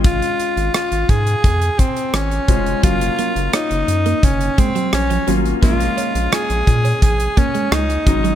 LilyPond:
<<
  \new Staff \with { instrumentName = "Alto saxophone" } { \time 4/4 \key bes \minor \tempo 4 = 86 f'4 f'8 aes'4 c'8 des'4 | f'4 ees'4 des'8 c'8 des'8 r8 | f'4 aes'4 aes'8 des'8 ees'4 | }
  \new Staff \with { instrumentName = "Grand piano" } { \time 4/4 \key bes \minor <aes c' des' f'>4. r2 <aes des' f' c''>8 | <ges bes des' f'>2 r4. <ges bes des' f'>8 | <aes bes des' f'>2 r4. <ges aes des' ees'>8 | }
  \new Staff \with { instrumentName = "Clean electric guitar" } { \time 4/4 \key bes \minor r1 | ges16 r16 bes16 r16 des'16 r8 bes16 r8 aes16 ges16 r16 f16 ges16 r16 | bes16 r16 des'16 r16 ees'16 r8 des'16 r8 bes16 aes16 aes16 r8 ges16 | }
  \new Staff \with { instrumentName = "Analog synth bass" } { \clef bass \time 4/4 \key bes \minor aes,,8 r16 aes,,16 r16 aes,,16 aes,8 f,8 r8 aes,,8 f,,8 | ges,,8 r16 ges,,16 r16 ges,,16 ges,8 ges,,8 r8 bes,,8 aes,,8 | bes,,8 r16 bes,,16 r16 bes,,16 bes,8 bes,,8 r8 des,8 aes,,8 | }
  \new DrumStaff \with { instrumentName = "Drums" } \drummode { \time 4/4 <hh bd>16 hh16 hh16 hh16 <hh ss>16 hh16 <hh bd>16 hh16 <hh bd>16 hh16 <hh bd>16 hh16 <hh ss>16 hh16 <hh bd>16 hh16 | <hh bd>16 hh16 hh16 hh16 <hh ss>16 hh16 hh16 hh16 <hh bd>16 hh16 <hh bd>16 hh16 <hh ss>16 hh16 hh16 hh16 | <hh bd>16 hh16 hh16 hh16 <hh ss>16 hh16 <hh bd>16 hh16 <hh bd>16 hh16 <hh bd>16 hh16 <hh ss>16 hh16 <hh bd>16 hh16 | }
>>